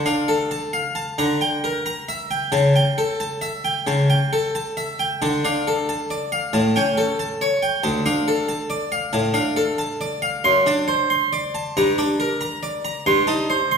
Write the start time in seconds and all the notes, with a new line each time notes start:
0.06 D4 F5
0.28 A4
0.51 A5
0.73 F5
0.95 A5
1.18 D3 A#5
1.41 G5
1.64 A#4
1.86 A#5
2.09 E5
2.31 G5
2.52 C#3 A5
2.76 G5
2.98 A4
3.20 A5
3.42 E5
3.65 G5
3.87 C#3 A5
4.10 G5
4.33 A4
4.55 A5
4.77 E5
4.99 G5
5.22 D3 A5
5.45 D4 F5
5.67 A4
5.89 A5
6.10 D5
6.32 F5
6.53 A2 A5
6.76 C#4 G5
6.97 A4
7.19 A5
7.41 C#5
7.62 G5
7.83 D2 A5
8.06 D4 F5
8.28 A4
8.49 A5
8.70 D5
8.92 F5
9.13 A2 A5
9.34 D4 F5
9.56 A4
9.78 A5
10.01 D5
10.22 F5
10.44 F#2 C6
10.66 D4 A5
10.88 C5
11.10 C6
11.33 D5
11.55 A5
11.77 G2 A#5
11.98 D4 D5
12.20 A#4
12.41 A#5
12.63 D5
12.85 A#5
13.06 G2 C6
13.27 D#4 A5
13.50 C5
13.71 C6